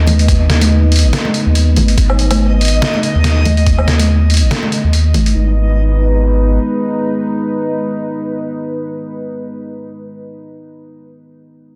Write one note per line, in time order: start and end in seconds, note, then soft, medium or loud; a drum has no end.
0.00 1.05 D#2 medium
0.00 5.31 G#3 medium
0.00 5.31 D#4 medium
0.00 5.31 B4 medium
0.00 5.36 D#5 medium
0.07 closed hi-hat medium
0.07 high conga medium
0.07 low conga medium
0.19 closed hi-hat soft
0.28 kick loud
0.28 closed hi-hat medium
0.50 snare medium
0.50 closed hi-hat medium
0.61 closed hi-hat medium
0.61 high conga medium
0.92 closed hi-hat soft
0.96 closed hi-hat medium
0.99 closed hi-hat medium
1.04 1.12 A1 medium
1.13 snare loud
1.13 closed hi-hat medium
1.25 high conga medium
1.34 closed hi-hat medium
1.46 1.78 D#2 medium
1.55 closed hi-hat medium
1.76 1.96 G#1 loud
1.76 closed hi-hat medium
1.76 high conga medium
1.76 low conga medium
1.88 closed hi-hat soft
1.98 2.74 G#1 loud
1.98 kick loud
1.98 closed hi-hat medium
2.10 low woodblock medium
2.19 closed hi-hat medium
2.31 closed hi-hat medium
2.31 high conga medium
2.31 low woodblock medium
2.61 closed hi-hat soft
2.65 closed hi-hat medium
2.68 closed hi-hat medium
2.73 2.81 A1 medium
2.82 snare loud
2.82 closed hi-hat medium
2.94 high conga medium
3.03 closed hi-hat medium
3.15 4.43 D#2 medium
3.24 snare medium
3.24 closed hi-hat medium
3.45 closed hi-hat medium
3.45 high conga medium
3.45 low conga medium
3.57 closed hi-hat soft
3.66 kick loud
3.66 closed hi-hat medium
3.78 low woodblock medium
3.88 snare medium
3.88 closed hi-hat soft
3.99 closed hi-hat medium
3.99 high conga medium
4.30 closed hi-hat soft
4.34 closed hi-hat medium
4.37 closed hi-hat medium
4.42 4.50 A1 medium
4.51 snare loud
4.51 closed hi-hat medium
4.63 high conga medium
4.72 closed hi-hat soft
4.84 5.16 D#2 medium
4.93 closed hi-hat medium
5.14 5.34 G#1 medium
5.14 closed hi-hat soft
5.14 high conga medium
5.14 low conga medium
5.26 closed hi-hat soft
5.35 6.58 G#1 medium
5.35 9.49 G#3 medium
5.35 9.49 D#4 medium
5.35 9.49 B4 medium